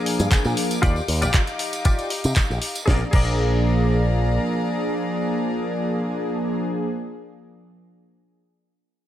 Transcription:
Already playing: analog synth pad F3 A#3 D4 G#4, string section A#4 F5 G#5 D6
0.06 open hi-hat
0.19 picked electric bass G2, closed hi-hat, tambourine
0.31 muted clean electric guitar stroke, kick, clap, closed hi-hat, tambourine
0.44 picked electric bass A#2, muted clean electric guitar stroke, tambourine
0.57 open hi-hat
0.71 closed hi-hat, tambourine
0.82 picked electric bass D#2, string section D#4 G4, clean electric guitar F4 G4 D5, kick, closed hi-hat, tambourine
0.96 tambourine
1.08 picked electric bass D#2, open hi-hat
1.22 picked electric bass A#1, clean electric guitar F4 G4 D5, closed hi-hat, tambourine
1.34 kick, clap, closed hi-hat, tambourine
1.47 closed hi-hat, tambourine
1.59 muted clean electric guitar stroke, open hi-hat
1.73 closed hi-hat, tambourine
1.85 clean electric guitar F4 G4 D5, kick, closed hi-hat, tambourine
1.99 closed hi-hat, tambourine
2.10 open hi-hat
2.24 picked electric bass C3, closed hi-hat, tambourine
2.36 muted clean electric guitar stroke, kick, clap, closed hi-hat, tambourine
2.50 picked electric bass A#1, muted clean electric guitar stroke, tambourine
2.62 open hi-hat
2.75 closed hi-hat, tambourine
2.86 picked electric bass A#1, analog synth pad F3 A#3 D4 G#4, clean electric guitar G#4 A#4, string section G#4 D5 F5 A#5, kick, snare
2.90 clean electric guitar D5
3.11 picked electric bass A#1, analog synth pad F3 A#3 D4 G#4, clean electric guitar G#4 A#4, kick, crash
3.15 clean electric guitar D5

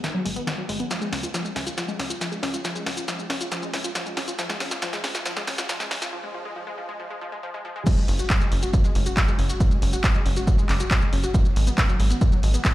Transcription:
0.04 synth pluck D#3, snare, closed hi-hat
0.14 synth pluck F#3
0.25 analog synth bass G#1, synth pluck G#3, open hi-hat
0.36 synth pluck B3, closed hi-hat
0.47 synth pluck D#3, snare, closed hi-hat
0.58 synth pluck F#3
0.69 analog synth bass G#1, synth pluck G#3, open hi-hat
0.80 synth pluck B3, closed hi-hat
0.90 synth pluck F3, snare, closed hi-hat, shaker
1.01 synth pluck G#3, shaker
1.12 analog synth bass C#2, synth pluck C#4, snare, open hi-hat
1.23 synth pluck F4, closed hi-hat, shaker
1.34 synth pluck F3, snare, closed hi-hat, shaker
1.45 synth pluck G#3, shaker
1.56 analog synth bass C#2, synth pluck C#4, snare, open hi-hat
1.67 synth pluck F4, closed hi-hat, shaker
1.77 synth pluck F3, snare, closed hi-hat, shaker
1.88 synth pluck G#3, shaker
1.99 analog synth bass C#2, synth pluck C#4, snare, open hi-hat
2.10 synth pluck F4, closed hi-hat, shaker
2.21 synth pluck F3, snare, closed hi-hat, shaker
2.32 synth pluck G#3, shaker
2.43 analog synth bass C#2, synth pluck C#4, snare, open hi-hat
2.53 synth pluck F4, closed hi-hat, shaker
2.64 synth pluck F3, snare, closed hi-hat, shaker
2.75 synth pluck G#3, shaker
2.86 analog synth bass C#2, synth pluck C#4, snare, open hi-hat
2.97 synth pluck F4, closed hi-hat, shaker
3.08 synth pluck F3, snare, closed hi-hat, shaker
3.19 synth pluck G#3, shaker
3.30 analog synth bass C#2, synth pluck C#4, snare, open hi-hat
3.41 synth pluck F4, closed hi-hat, shaker
3.52 synth pluck F3, snare, closed hi-hat, shaker
3.62 synth pluck G#3, shaker
3.73 analog synth bass C#2, synth pluck C#4, snare, open hi-hat
3.84 synth pluck F4, closed hi-hat, shaker
3.95 synth pluck F3, snare, closed hi-hat, shaker
4.06 synth pluck G#3, shaker
4.17 analog synth bass C#2, synth pluck C#4, snare, open hi-hat
4.28 synth pluck F4, closed hi-hat, shaker
4.39 synth pluck F3, snare, closed hi-hat, shaker
4.50 synth pluck G#3, snare, shaker
4.60 analog synth bass A#1, synth pluck C#4, snare, open hi-hat
4.71 synth pluck F4, snare, closed hi-hat, shaker
4.82 synth pluck F3, snare, closed hi-hat, shaker
4.93 synth pluck G#3, snare, shaker
5.04 analog synth bass A#1, synth pluck C#4, snare, open hi-hat
5.15 synth pluck F4, snare, closed hi-hat, shaker
5.26 synth pluck F3, snare, closed hi-hat, shaker
5.37 synth pluck G#3, snare, shaker
5.47 analog synth bass A#1, synth pluck C#4, snare, open hi-hat
5.58 synth pluck F4, snare, closed hi-hat, shaker
5.69 synth pluck F3, snare, closed hi-hat, shaker
5.80 synth pluck G#3, snare, shaker
5.91 analog synth bass A#1, synth pluck C#4, snare, open hi-hat
6.02 synth pluck F4, snare, closed hi-hat, shaker
6.13 synth pluck F3
6.24 synth pluck G#3
6.34 synth pluck F3
6.45 synth pluck G#3
6.56 synth pluck F3
6.67 synth pluck G#3
6.78 synth pluck F3
6.89 synth pluck G#3
7.00 synth pluck F3
7.10 synth pluck G#3
7.21 synth pluck F3
7.32 synth pluck G#3
7.43 synth pluck F3
7.54 synth pluck G#3
7.65 synth pluck F3
7.76 synth pluck G#3
7.87 synth pluck F#3, kick, closed hi-hat, crash, shaker
7.97 synth pluck G#3, shaker
8.08 analog synth bass F#1, synth pluck C#4, open hi-hat
8.19 synth pluck F#4, closed hi-hat, shaker
8.30 synth pluck F#3, kick, clap, closed hi-hat, shaker
8.41 synth pluck G#3, shaker
8.52 analog synth bass F#1, synth pluck C#4, open hi-hat
8.63 synth pluck F#4, closed hi-hat, shaker
8.73 synth pluck F#3, kick, closed hi-hat, shaker
8.84 synth pluck G#3, shaker
8.95 analog synth bass F#1, synth pluck C#4, open hi-hat
9.06 synth pluck F#4, closed hi-hat, shaker
9.17 synth pluck F#3, kick, clap, closed hi-hat, shaker
9.28 synth pluck G#3, shaker
9.38 analog synth bass F#1, synth pluck C#4, open hi-hat
9.49 synth pluck F#4, closed hi-hat, shaker
9.60 synth pluck F#3, kick, closed hi-hat, shaker
9.71 synth pluck G#3, shaker
9.82 analog synth bass F#1, synth pluck C#4, open hi-hat
9.93 synth pluck F#4, closed hi-hat, shaker
10.04 synth pluck F#3, kick, clap, closed hi-hat, shaker
10.15 synth pluck G#3, shaker
10.26 analog synth bass F#1, synth pluck C#4, open hi-hat
10.36 synth pluck F#4, closed hi-hat, shaker
10.47 synth pluck F#3, kick, closed hi-hat, shaker
10.58 synth pluck G#3, shaker
10.69 analog synth bass F#1, synth pluck C#4, clap, open hi-hat
10.80 synth pluck F#4, closed hi-hat, shaker
10.91 synth pluck F#3, kick, clap, closed hi-hat, shaker
11.02 synth pluck G#3, shaker
11.13 analog synth bass F#1, synth pluck C#4, open hi-hat
11.23 synth pluck F#4, closed hi-hat, shaker
11.34 synth pluck D#3, kick, closed hi-hat, shaker
11.45 synth pluck F#3, shaker
11.56 analog synth bass G#1, synth pluck G#3, open hi-hat
11.67 synth pluck B3, closed hi-hat, shaker
11.78 synth pluck D#3, kick, clap, closed hi-hat, shaker
11.89 synth pluck F#3, shaker
12.00 analog synth bass G#1, synth pluck G#3, open hi-hat
12.11 synth pluck B3, closed hi-hat, shaker
12.21 synth pluck D#3, kick, closed hi-hat, shaker
12.32 synth pluck F#3, shaker
12.43 analog synth bass G#1, synth pluck G#3, open hi-hat
12.54 synth pluck B3, closed hi-hat, shaker
12.65 synth pluck D#3, kick, clap, closed hi-hat, shaker

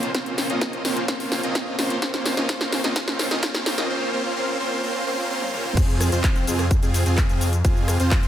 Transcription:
Already playing: detuned saw bass C#2
0.03 closed hi-hat
0.15 detuned saw bass C#2, supersaw synth A#3 C4 C#4 F4 C5, kick, snare, closed hi-hat
0.26 closed hi-hat
0.38 snare, open hi-hat
0.50 detuned saw bass C#2, supersaw synth A#3 C4 C#4 F4 D#5, closed hi-hat
0.61 kick, snare, closed hi-hat
0.73 closed hi-hat
0.85 detuned saw bass C#2, supersaw synth A#3 C4 C#4 F4 C5, snare, open hi-hat
0.97 closed hi-hat
1.08 detuned saw bass C#2, supersaw synth A#3 C4 C#4 F4 C5, kick, snare, closed hi-hat
1.20 open hi-hat
1.32 snare, open hi-hat
1.44 detuned saw bass C#2, supersaw synth A#3 C4 C#4 F4 D#5, closed hi-hat
1.55 kick, snare, closed hi-hat
1.79 detuned saw bass C#2, supersaw synth A#3 C4 C#4 F4 C5, snare, open hi-hat
1.90 closed hi-hat
2.02 detuned saw bass C#2, supersaw synth A#3 C4 C#4 F4 C5, kick, snare, closed hi-hat
2.14 snare, closed hi-hat
2.26 snare, open hi-hat
2.37 detuned saw bass C#2, supersaw synth A#3 C4 C#4 F4 D#5, snare, closed hi-hat
2.49 detuned saw bass C#2, supersaw synth A#3 C4 C#4 F4 C5, kick, snare, closed hi-hat
2.61 snare, closed hi-hat
2.73 snare, open hi-hat
2.84 detuned saw bass C#2, supersaw synth A#3 C4 C#4 F4 D#5, snare, closed hi-hat
2.96 detuned saw bass C#2, supersaw synth A#3 C4 C#4 F4 C5, kick, snare, closed hi-hat
3.08 snare
3.19 snare, open hi-hat
3.31 detuned saw bass C#2, supersaw synth A#3 C4 C#4 F4 D#5, snare, closed hi-hat
3.43 detuned saw bass C#2, supersaw synth A#3 C4 C#4 F4 C5, kick, snare, closed hi-hat
3.55 snare
3.66 snare, open hi-hat
3.78 detuned saw bass C#2, supersaw synth A#3 C4 C#4 F4 D#5, snare, closed hi-hat
3.90 supersaw synth A#3 C4 C#4 F4 C5
4.13 supersaw synth A#3 C4 C#4 F4 C5
4.36 supersaw synth A#3 C4 C#4 F4 C5
4.60 supersaw synth A#3 C4 C#4 F4 C5
4.83 supersaw synth A#3 C4 C#4 F4 C5
5.07 supersaw synth A#3 C4 C#4 F4 C5
5.30 supersaw synth A#3 C4 C#4 F4 C5
5.42 high tom
5.54 supersaw synth A#3 C4 C#4 F4 C5, mid tom
5.65 mid tom
5.77 detuned saw bass F2, supersaw synth C4 F4 G#4, kick, closed hi-hat, crash, cabasa
5.90 cabasa
6.01 cross-stick, open hi-hat, cabasa
6.12 detuned saw bass F2, supersaw synth C4 F4 C5, closed hi-hat, cabasa
6.24 kick, clap, closed hi-hat, cabasa
6.36 closed hi-hat, cabasa
6.47 detuned saw bass F2, supersaw synth C4 F4 G#4, open hi-hat, cabasa
6.59 cross-stick, closed hi-hat, cabasa
6.71 kick, closed hi-hat, cabasa
6.83 detuned saw bass F2, supersaw synth C4 F4 G#4, closed hi-hat, cabasa
6.94 open hi-hat, cabasa
7.06 detuned saw bass F2, supersaw synth C4 F4 G#4, closed hi-hat, cabasa
7.18 kick, clap, closed hi-hat, cabasa
7.29 detuned saw bass F2, supersaw synth C4 F4 G#4, closed hi-hat, cabasa
7.41 open hi-hat, cabasa
7.53 closed hi-hat, cabasa
7.65 detuned saw bass F2, supersaw synth C4 F4 G#4, kick, closed hi-hat, cabasa
7.77 cabasa
7.88 cross-stick, open hi-hat, cabasa
8.00 detuned saw bass F2, supersaw synth C4 F4 C5, closed hi-hat, cabasa
8.11 kick, clap, closed hi-hat, cabasa
8.23 closed hi-hat, cabasa

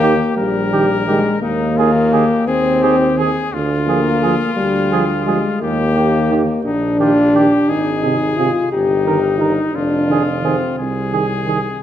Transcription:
Already playing: tuba D#2, french horn A#3, trumpet G4
0.02 trombone D#3, flugelhorn G4
0.37 tuba A#1, french horn G3, trumpet A#4
0.72 trombone D#3, flugelhorn G4
1.07 trombone D#3, french horn G#3, flugelhorn G4
1.42 tuba D#2, french horn A#3, trumpet D#4
1.77 trombone D#3, trumpet F4, flugelhorn G#4
2.12 trombone D#3, trumpet G4, flugelhorn G#4
2.47 tuba D#2, french horn C4, trumpet G#4
2.82 trombone D#3, trumpet G4, flugelhorn G#4
3.17 trombone D#3, trumpet G#4, flugelhorn G#4
3.53 tuba D2, trumpet F4
3.88 trombone F3, french horn A#3, flugelhorn G#4
4.22 trombone F3, flugelhorn G#4
4.57 tuba D2, french horn G3
4.92 trombone F3, flugelhorn G#4
5.26 trombone F3, french horn G#3, flugelhorn G#4
5.61 tuba D#2, french horn A#3, trumpet G4
5.96 trombone D#3, flugelhorn G4
6.30 trombone D#3, flugelhorn G4
6.65 tuba A#1, french horn D4, trumpet D#4
6.99 trombone D#3, trumpet F4, flugelhorn G4
7.34 trombone D#3, flugelhorn G4, trumpet G4
7.69 tuba G#1, french horn D#4, trumpet G#4
8.03 trombone C3, flugelhorn G#4
8.37 trombone C3, french horn F4, flugelhorn G#4
8.72 tuba G1, trumpet D#4, french horn G4
9.06 trombone D#3, flugelhorn A#4
9.40 trombone D#3, french horn D#4, flugelhorn A#4
9.75 tuba F1, french horn D4, trumpet F4
10.08 trombone D#3, flugelhorn G#4
10.43 trombone D#3, french horn C4, flugelhorn G#4
10.78 tuba C2, trumpet G#4
11.12 trombone D#3, flugelhorn G#4
11.46 trombone D#3, flugelhorn G#4

